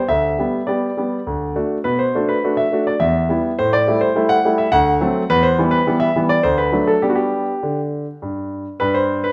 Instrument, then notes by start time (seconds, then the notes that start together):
grand piano
0.08 D2 E5
0.39 G3 B3 G4
0.67 G3 B3 G4 D5
0.97 G3 B3 G4
1.27 D2
1.56 A3 D4 F#4
1.84 B2 B4
1.99 C5
2.15 A3 D4 F#4
2.29 B4
2.44 A3 D4 F#4
2.57 E5
2.72 A3 D4 F#4
2.87 D5
3.00 E2 E5
3.29 G3 B3 E4
3.59 A2 C5
3.73 D5
3.88 G3 A3 E4
4.01 C5
4.15 G3 A3 E4
4.29 F#5
4.45 G3 A3 E4
4.58 E5
4.72 D2 F#5
5.01 F#3 A3 C4
5.30 E2 B4
5.43 C5
5.58 E3 G3 B3
5.71 B4
5.87 E3 G3 B3
6.00 E5
6.16 E3 G3 B3
6.29 D5
6.43 D2 C5
6.58 B4
6.72 F#3 A3 D4
6.87 A4
7.02 G3 B3 D4 G4
7.10 F#4
7.15 G4
7.63 D3
8.22 G2
8.80 G2 B4
8.94 C5
9.24 B4